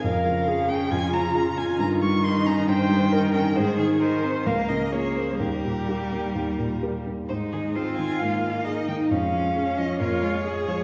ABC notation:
X:1
M:4/4
L:1/8
Q:1/4=133
K:Ab
V:1 name="Violin"
f3 g a b2 a | b d' c' b g3 g | c A B c f e d c | B6 z2 |
c A c a f2 e g | f3 e d3 d |]
V:2 name="Viola"
B2 A2 F4- | F2 E2 c2 B2 | A2 c2 B2 A2 | G6- G z |
A,2 C2 B,4 | A,2 D2 B, A,3 |]
V:3 name="Cello"
D,8 | E,8 | E,4 B,2 B,2 | G,6- G, z |
E2 F4 E2 | D4 F2 A2 |]
V:4 name="Grand piano"
F,, F, [FA] D F,, F, [FA] D | G,, G, [EB] D G,, G, [EB] D | A,, E, [EA] C D,, D, [FB] B, | E,, B,, [GB] B, E,, B,, [GB] B, |
A,, E, A E, A,, A, A E, | F,, F, A F, F,, A, A F, |]